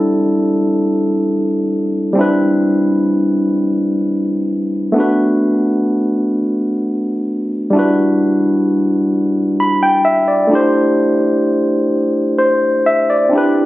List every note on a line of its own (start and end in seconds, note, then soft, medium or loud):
0.00 2.10 G3 medium
0.00 2.11 C4 medium
0.00 2.12 D4 medium
0.00 2.13 E4 medium
0.00 2.15 A4 medium
2.13 4.90 G3 medium
2.13 4.91 C4 medium
2.17 4.92 D4 medium
2.17 4.93 E4 medium
2.17 4.94 B4 medium
4.92 7.69 A3 medium
4.92 7.70 B3 medium
4.92 7.71 D4 medium
4.98 7.72 F#4 medium
4.98 7.73 B4 medium
7.70 10.47 G3 medium
7.70 10.48 D4 medium
7.75 10.50 E4 medium
7.75 10.50 F#4 medium
7.79 10.52 B4 medium
9.60 9.82 B5 medium
9.83 10.05 G5 medium
10.05 10.28 E5 medium
10.28 10.73 D5 medium
10.47 13.25 A3 medium
10.47 13.27 D4 medium
10.51 13.28 E4 medium
10.51 13.29 G4 medium
10.51 12.37 C5 medium
12.38 12.83 C5 medium
12.86 13.08 E5 medium
13.10 13.54 D5 medium
13.29 13.66 C4 medium
13.29 13.66 D4 medium
13.29 13.66 E4 medium
13.35 13.66 G4 medium
13.35 13.66 B4 medium